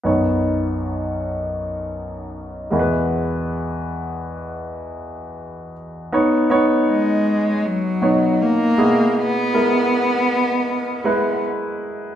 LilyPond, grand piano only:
<<
  \new Staff \with { instrumentName = "Grand piano" } { \time 4/4 \key b \major \tempo 4 = 79 <b dis' cis''>2.~ <b dis' cis''>8 <gis e' ais' b'>8~ | <gis e' ais' b'>2.~ <gis e' ais' b'>8 r8 | <b dis' cis''>8 <b dis' cis''>2 <b, dis' cis''>4 <gis e' gis'>8~ | <gis e' gis'>8 <gis e' ais'>2 <gis e' b'>4. | }
  \new Staff \with { instrumentName = "Grand piano" } { \clef bass \time 4/4 \key b \major <b,, fis,>2.~ <b,, fis,>8 <e, b,>8~ | <e, b,>2.~ <e, b,>8 r8 | r2. r8 b,8~ | b,4 r2. | }
>>